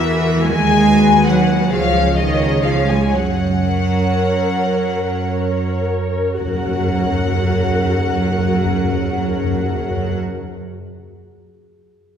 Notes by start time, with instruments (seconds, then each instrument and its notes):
Already playing: double bass section E2, cello section E3, viola section F#4 A#4, violin section E5
0.43 double bass section D#2, cello section G#3, violin section G#5
0.84 viola section F#4 B4
1.27 cello section F#3, violin section F#5
1.70 double bass section C#2, cello section F3, viola section G#4 C#5, violin section F5
2.16 cello section D#3, viola section G#4 C#5, violin section D#5
2.63 cello section F3, violin section F5
2.88 cello section G#3, violin section G#5
3.13 double bass section F#2, cello section F#3, violin section F#5
3.66 viola section A#4 C#5
4.69 double bass section F#2
5.26 viola section A#4 C#5
6.38 double bass section F#2, timpani F#2, cello section F#3, viola section F#4 A#4, violin section F#5
6.45 timpani F#2
6.52 timpani F#2
6.59 timpani F#2
6.66 timpani F#2
6.73 timpani F#2
6.80 timpani F#2
6.86 timpani F#2
6.92 timpani F#2
6.99 timpani F#2
7.05 timpani F#2
7.12 timpani F#2
7.19 timpani F#2
7.25 timpani F#2
7.32 timpani F#2
7.38 timpani F#2
7.45 timpani F#2
7.51 timpani F#2
7.57 timpani F#2
7.64 timpani F#2
7.70 timpani F#2
7.77 timpani F#2
7.83 timpani F#2
7.90 timpani F#2
7.98 timpani F#2
8.04 timpani F#2
8.11 timpani F#2
8.18 timpani F#2
8.24 timpani F#2
8.32 timpani F#2
8.38 timpani F#2
8.44 timpani F#2
8.51 timpani F#2
8.58 timpani F#2
8.65 timpani F#2
8.72 timpani F#2
8.78 timpani F#2
8.85 timpani F#2
8.92 timpani F#2
8.98 timpani F#2
9.05 timpani F#2
9.11 timpani F#2
9.18 timpani F#2
9.24 timpani F#2
9.31 timpani F#2
9.38 timpani F#2
9.44 timpani F#2
9.50 timpani F#2
9.56 timpani F#2
9.63 timpani F#2
9.69 timpani F#2
9.77 timpani F#2
9.83 timpani F#2
9.90 timpani F#2
9.97 timpani F#2
10.03 timpani F#2
10.09 timpani F#2